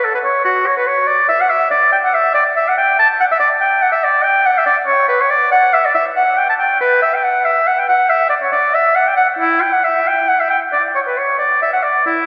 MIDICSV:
0, 0, Header, 1, 2, 480
1, 0, Start_track
1, 0, Tempo, 422833
1, 506, Time_signature, 12, 3, 24, 8
1, 5785, Tempo, 428571
1, 9625, Tempo, 440205
1, 13698, End_track
2, 0, Start_track
2, 0, Title_t, "Oboe"
2, 0, Program_c, 0, 68
2, 49, Note_on_c, 0, 69, 63
2, 158, Note_off_c, 0, 69, 0
2, 165, Note_on_c, 0, 71, 55
2, 215, Note_off_c, 0, 71, 0
2, 275, Note_on_c, 0, 73, 66
2, 500, Note_off_c, 0, 73, 0
2, 506, Note_on_c, 0, 66, 71
2, 752, Note_on_c, 0, 73, 65
2, 769, Note_off_c, 0, 66, 0
2, 867, Note_off_c, 0, 73, 0
2, 878, Note_on_c, 0, 71, 60
2, 983, Note_on_c, 0, 73, 67
2, 1000, Note_off_c, 0, 71, 0
2, 1216, Note_on_c, 0, 74, 72
2, 1233, Note_off_c, 0, 73, 0
2, 1453, Note_off_c, 0, 74, 0
2, 1460, Note_on_c, 0, 76, 72
2, 1598, Note_on_c, 0, 78, 66
2, 1615, Note_off_c, 0, 76, 0
2, 1700, Note_on_c, 0, 76, 71
2, 1717, Note_off_c, 0, 78, 0
2, 1932, Note_off_c, 0, 76, 0
2, 1939, Note_on_c, 0, 74, 75
2, 2176, Note_off_c, 0, 74, 0
2, 2183, Note_on_c, 0, 79, 78
2, 2240, Note_off_c, 0, 79, 0
2, 2321, Note_on_c, 0, 78, 65
2, 2430, Note_on_c, 0, 76, 73
2, 2447, Note_off_c, 0, 78, 0
2, 2653, Note_off_c, 0, 76, 0
2, 2660, Note_on_c, 0, 74, 78
2, 2771, Note_off_c, 0, 74, 0
2, 2911, Note_on_c, 0, 76, 73
2, 3042, Note_on_c, 0, 78, 65
2, 3059, Note_off_c, 0, 76, 0
2, 3146, Note_off_c, 0, 78, 0
2, 3153, Note_on_c, 0, 79, 85
2, 3386, Note_off_c, 0, 79, 0
2, 3395, Note_on_c, 0, 81, 94
2, 3501, Note_off_c, 0, 81, 0
2, 3631, Note_on_c, 0, 78, 78
2, 3683, Note_off_c, 0, 78, 0
2, 3762, Note_on_c, 0, 76, 68
2, 3811, Note_off_c, 0, 76, 0
2, 3853, Note_on_c, 0, 74, 72
2, 3962, Note_off_c, 0, 74, 0
2, 4096, Note_on_c, 0, 79, 82
2, 4335, Note_on_c, 0, 78, 66
2, 4352, Note_off_c, 0, 79, 0
2, 4441, Note_off_c, 0, 78, 0
2, 4448, Note_on_c, 0, 76, 69
2, 4579, Note_on_c, 0, 74, 77
2, 4596, Note_off_c, 0, 76, 0
2, 4798, Note_on_c, 0, 79, 87
2, 4815, Note_off_c, 0, 74, 0
2, 5059, Note_on_c, 0, 78, 73
2, 5076, Note_off_c, 0, 79, 0
2, 5197, Note_on_c, 0, 76, 69
2, 5214, Note_off_c, 0, 78, 0
2, 5283, Note_off_c, 0, 76, 0
2, 5290, Note_on_c, 0, 74, 76
2, 5401, Note_off_c, 0, 74, 0
2, 5525, Note_on_c, 0, 73, 80
2, 5763, Note_off_c, 0, 73, 0
2, 5769, Note_on_c, 0, 71, 71
2, 5907, Note_on_c, 0, 73, 67
2, 5924, Note_off_c, 0, 71, 0
2, 6016, Note_on_c, 0, 74, 82
2, 6033, Note_off_c, 0, 73, 0
2, 6247, Note_off_c, 0, 74, 0
2, 6254, Note_on_c, 0, 78, 89
2, 6500, Note_on_c, 0, 76, 78
2, 6517, Note_off_c, 0, 78, 0
2, 6633, Note_on_c, 0, 74, 62
2, 6650, Note_off_c, 0, 76, 0
2, 6728, Note_off_c, 0, 74, 0
2, 6735, Note_on_c, 0, 76, 72
2, 6847, Note_off_c, 0, 76, 0
2, 6979, Note_on_c, 0, 78, 78
2, 7220, Note_on_c, 0, 79, 76
2, 7236, Note_off_c, 0, 78, 0
2, 7339, Note_off_c, 0, 79, 0
2, 7345, Note_on_c, 0, 81, 71
2, 7400, Note_off_c, 0, 81, 0
2, 7463, Note_on_c, 0, 79, 74
2, 7694, Note_off_c, 0, 79, 0
2, 7701, Note_on_c, 0, 71, 81
2, 7934, Note_off_c, 0, 71, 0
2, 7941, Note_on_c, 0, 76, 69
2, 8075, Note_on_c, 0, 79, 62
2, 8092, Note_off_c, 0, 76, 0
2, 8180, Note_on_c, 0, 78, 67
2, 8196, Note_off_c, 0, 79, 0
2, 8420, Note_on_c, 0, 76, 81
2, 8437, Note_off_c, 0, 78, 0
2, 8669, Note_on_c, 0, 78, 72
2, 8686, Note_off_c, 0, 76, 0
2, 8800, Note_on_c, 0, 79, 62
2, 8817, Note_off_c, 0, 78, 0
2, 8901, Note_off_c, 0, 79, 0
2, 8908, Note_on_c, 0, 78, 75
2, 9141, Note_on_c, 0, 76, 80
2, 9158, Note_off_c, 0, 78, 0
2, 9363, Note_off_c, 0, 76, 0
2, 9370, Note_on_c, 0, 74, 68
2, 9427, Note_off_c, 0, 74, 0
2, 9509, Note_on_c, 0, 73, 55
2, 9612, Note_off_c, 0, 73, 0
2, 9619, Note_on_c, 0, 74, 70
2, 9863, Note_on_c, 0, 76, 72
2, 9879, Note_off_c, 0, 74, 0
2, 10092, Note_on_c, 0, 78, 71
2, 10109, Note_off_c, 0, 76, 0
2, 10222, Note_on_c, 0, 79, 67
2, 10238, Note_off_c, 0, 78, 0
2, 10320, Note_off_c, 0, 79, 0
2, 10326, Note_on_c, 0, 78, 70
2, 10435, Note_off_c, 0, 78, 0
2, 10566, Note_on_c, 0, 64, 76
2, 10811, Note_on_c, 0, 79, 72
2, 10827, Note_off_c, 0, 64, 0
2, 10937, Note_on_c, 0, 78, 64
2, 10954, Note_off_c, 0, 79, 0
2, 11060, Note_on_c, 0, 76, 70
2, 11076, Note_off_c, 0, 78, 0
2, 11316, Note_on_c, 0, 79, 79
2, 11332, Note_off_c, 0, 76, 0
2, 11546, Note_on_c, 0, 78, 68
2, 11562, Note_off_c, 0, 79, 0
2, 11670, Note_on_c, 0, 76, 54
2, 11686, Note_off_c, 0, 78, 0
2, 11769, Note_off_c, 0, 76, 0
2, 11775, Note_on_c, 0, 79, 74
2, 11883, Note_off_c, 0, 79, 0
2, 12024, Note_on_c, 0, 74, 71
2, 12130, Note_off_c, 0, 74, 0
2, 12270, Note_on_c, 0, 73, 67
2, 12321, Note_off_c, 0, 73, 0
2, 12404, Note_on_c, 0, 71, 53
2, 12514, Note_on_c, 0, 73, 61
2, 12531, Note_off_c, 0, 71, 0
2, 12737, Note_off_c, 0, 73, 0
2, 12743, Note_on_c, 0, 74, 67
2, 12972, Note_off_c, 0, 74, 0
2, 12998, Note_on_c, 0, 76, 66
2, 13103, Note_off_c, 0, 76, 0
2, 13120, Note_on_c, 0, 78, 61
2, 13230, Note_on_c, 0, 74, 61
2, 13246, Note_off_c, 0, 78, 0
2, 13467, Note_off_c, 0, 74, 0
2, 13478, Note_on_c, 0, 64, 65
2, 13698, Note_off_c, 0, 64, 0
2, 13698, End_track
0, 0, End_of_file